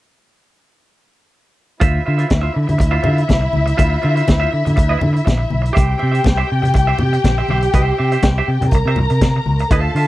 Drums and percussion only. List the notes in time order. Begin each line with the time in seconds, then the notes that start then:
1.81 kick, closed hi-hat, muted conga
2.19 closed hi-hat
2.30 kick, snare, closed hi-hat, high conga
2.69 closed hi-hat, low conga
2.79 kick, closed hi-hat, muted conga
3.04 muted conga, low conga
3.18 closed hi-hat
3.29 kick, snare, closed hi-hat, high conga
3.53 high conga
3.67 closed hi-hat
3.79 kick, closed hi-hat, muted conga
4.03 muted conga
4.17 closed hi-hat
4.28 kick, snare, closed hi-hat, high conga
4.66 closed hi-hat, low conga
4.77 kick, closed hi-hat, muted conga
5.01 muted conga, low conga
5.16 closed hi-hat
5.27 kick, snare, closed hi-hat, high conga
5.50 high conga
5.65 closed hi-hat
5.76 kick, closed hi-hat, muted conga
5.99 muted conga
6.15 closed hi-hat
6.24 kick, snare, closed hi-hat, high conga
6.63 closed hi-hat, low conga
6.74 kick, closed hi-hat, muted conga
6.99 muted conga, low conga
7.13 closed hi-hat
7.24 kick, snare, closed hi-hat, high conga
7.49 high conga
7.62 closed hi-hat
7.74 kick, closed hi-hat, muted conga
8.12 closed hi-hat
8.23 kick, snare, closed hi-hat, high conga
8.62 closed hi-hat, low conga
8.71 kick, closed hi-hat, muted conga
8.96 muted conga, low conga
9.10 closed hi-hat
9.21 kick, snare, closed hi-hat, high conga
9.46 high conga
9.59 closed hi-hat
9.71 kick, closed hi-hat, muted conga
9.96 open hi-hat